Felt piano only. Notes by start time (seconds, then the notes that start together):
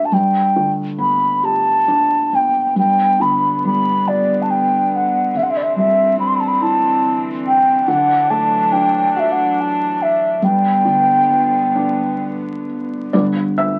Already playing: A3 D4 F#4 A4
0.12 G2
0.56 D3
0.98 B3
1.43 G4
1.88 D4
2.33 B3
2.76 G2
3.20 D3
3.65 G3
4.08 B3
5.35 C3
5.76 G3
6.18 C4
6.61 E4
7.88 D3
8.30 A3
8.73 D4
9.16 F#4
10.42 G2
10.85 D3
11.30 B3
11.76 D4
13.13 G2 D3 B3 B4 D5
13.58 E5